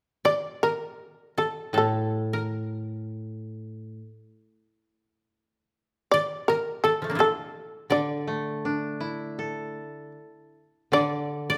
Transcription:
0.25 D5
0.63 A#4
1.38 A4
1.73 A2 A4
1.78 A4
2.33 A#4
6.11 D5
6.48 A#4
6.84 A4
7.02 F3 A3
7.10 A#3 D4
7.15 E4 F4 A4
7.20 A4
7.90 D3 D5
8.27 A3
8.65 D4
8.96 C#5
9.00 E4
9.10 C5
9.24 B4
9.38 A4 A#4
10.92 D3 D5
11.50 D5

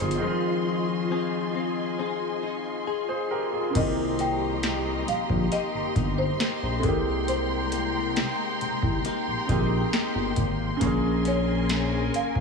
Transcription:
Already playing: C#3 D#3 F3 C4 C#4 D#4 F4 G4 A#4 C5 D#5 C6 C#6
0.00 G1 F4 G#4, closed hi-hat
0.11 closed hi-hat
0.18 D#3 G#3
0.22 F3 C4 G#5
0.27 F4
1.11 C4 D#4 G#4
1.55 C4
1.99 C4 D#4 G#4
2.43 D#4
2.87 G#4
3.09 G#4 C5
3.31 G4 A#4
3.53 F4 G#4
3.70 C#3 A#3
3.75 C2 C3 D#3 C4 G4 D#5 A#5 C6, kick, closed hi-hat, crash
3.79 G4
4.19 A#3 G5, closed hi-hat
4.63 A#3 D#4 G4, snare, closed hi-hat
5.08 A#1 F5, closed hi-hat
5.30 A#1, kick
5.52 A#3 D#4 G4 D#5, closed hi-hat
5.75 G1
5.96 G1 D#4, kick, closed hi-hat
6.18 C5
6.40 A#3 D#4 G4, snare, closed hi-hat
6.63 A#1
6.78 C3 A4
6.82 C2 C3 G#3 A#3 A#4 G5 A#5, kick, closed hi-hat
6.89 G4
7.28 C3 C5, closed hi-hat
7.72 A#3, closed hi-hat
8.16 A#3 D#4 G4, snare, closed hi-hat
8.61 C2, closed hi-hat
8.83 C2, kick
9.05 A#3 D#4 G4, closed hi-hat
9.27 A#1
9.47 A#1 C3 G#3 A#3 D#4, kick, closed hi-hat
9.51 G4
9.93 A#3 D#4 G4, snare, closed hi-hat
10.15 G1
10.36 G#1, kick, closed hi-hat
10.77 C#3 A#3 A#4 G#5
10.81 A#1 A#3 C#4, kick, closed hi-hat
10.86 G#4
11.25 C#4 C#5, closed hi-hat
11.69 C#4 G#4, snare, closed hi-hat
12.14 G#1 F5, closed hi-hat
12.36 G#1, kick

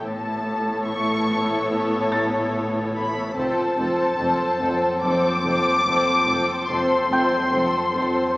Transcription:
0.02 A1 A2 B3 E4 A4 C#5 A5
0.86 C#6
2.12 A6
2.95 B5
3.35 F1 F2 C4 F4 A4 C5 A5, taiko
3.78 F1 F2 C4 F4 A4 C5
4.19 F1 F2 C4 F4 A4 C5
4.60 F1 F2 C4 F4 A4 C5, taiko
5.02 F1 F2 C4 F4 A4 C5 D6
5.44 F1 F2 C4 F4 A4 C5
5.86 F1 F2 C4 F4 A4 C5
6.28 F1 F2 C4 F4 A4 C5
6.69 F1 F2 C4 F4 A4 C5 C6
7.11 F1 F2 C4 F4 A4 C5 G5 G6
7.53 F1 F2 C4 F4 A4 C5
7.94 F1 F2 C4 F4 A4 C5

